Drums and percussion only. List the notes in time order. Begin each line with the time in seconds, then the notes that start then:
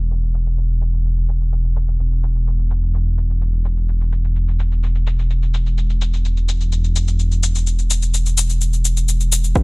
0.11 shaker
0.23 shaker
0.34 shaker
0.46 shaker
0.58 shaker
0.70 shaker
0.81 shaker
0.94 shaker
1.05 shaker
1.17 shaker
1.29 shaker
1.41 shaker
1.52 shaker
1.65 shaker
1.76 shaker
1.88 shaker
2.00 shaker
2.12 shaker
2.23 shaker
2.35 shaker
2.47 shaker
2.59 shaker
2.71 shaker
2.83 shaker
2.94 shaker
3.06 shaker
3.18 shaker
3.30 shaker
3.41 shaker
3.54 shaker
3.65 shaker
3.77 shaker
3.89 shaker
4.01 shaker
4.12 shaker
4.24 shaker
4.36 shaker
4.48 shaker
4.60 shaker
4.72 shaker
4.83 shaker
4.95 shaker
5.07 shaker
5.19 shaker
5.30 shaker
5.42 shaker
5.54 shaker
5.66 shaker
5.78 shaker
5.90 shaker
6.01 shaker
6.13 shaker
6.25 shaker
6.37 shaker
6.49 shaker
6.61 shaker
6.72 shaker
6.84 shaker
6.96 shaker
7.08 shaker
7.19 shaker
7.32 shaker
7.43 shaker
7.55 shaker
7.67 shaker
7.79 shaker
7.90 shaker
8.02 shaker
8.14 shaker
8.26 shaker
8.37 shaker
8.50 shaker
8.61 shaker
8.73 shaker
8.85 shaker
8.97 shaker
9.08 shaker
9.20 shaker
9.32 shaker
9.44 shaker
9.56 kick, shaker